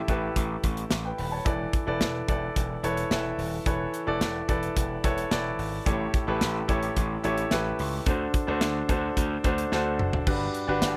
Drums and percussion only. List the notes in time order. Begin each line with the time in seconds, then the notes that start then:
0.08 kick, closed hi-hat
0.36 kick, closed hi-hat
0.64 kick, closed hi-hat
0.77 closed hi-hat
0.91 snare, closed hi-hat
1.18 open hi-hat
1.46 kick, closed hi-hat
1.73 kick, closed hi-hat
2.01 snare, closed hi-hat
2.28 kick, closed hi-hat
2.56 kick, closed hi-hat
2.84 closed hi-hat
2.97 closed hi-hat
3.11 snare, closed hi-hat
3.39 open hi-hat
3.66 kick, closed hi-hat
3.94 closed hi-hat
4.21 snare, closed hi-hat
4.49 kick, closed hi-hat
4.63 closed hi-hat
4.77 kick, closed hi-hat
5.04 kick, closed hi-hat
5.18 closed hi-hat
5.31 snare, closed hi-hat
5.59 open hi-hat
5.86 kick, closed hi-hat
6.14 kick, closed hi-hat
6.41 snare, closed hi-hat
6.69 kick, closed hi-hat
6.83 closed hi-hat
6.96 kick, closed hi-hat
7.24 closed hi-hat
7.38 closed hi-hat
7.51 snare, closed hi-hat
7.79 open hi-hat
8.06 kick, closed hi-hat
8.34 kick, closed hi-hat
8.61 snare, closed hi-hat
8.89 kick, closed hi-hat
9.17 kick, closed hi-hat
9.44 kick, closed hi-hat
9.58 closed hi-hat
9.72 snare
9.99 mid tom
10.13 floor tom
10.27 kick, crash
10.54 closed hi-hat
10.82 snare, closed hi-hat, tambourine